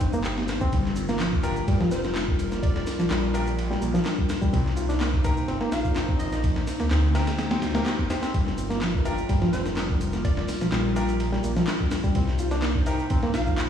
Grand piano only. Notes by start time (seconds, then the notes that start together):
1.43 D4 F4 G4 A#4
3.34 D4 F4 G4 A#4
5.24 C4 D#4 G4 A#4
7.15 C4 D#4 G4 A#4
7.75 C4 D#4 G4 A#4
8.10 C4 D#4 G4 C5
9.05 D4 F4 G4 A#4
10.96 D4 F4 G4 A#4
12.87 C4 D#4 G4 A#4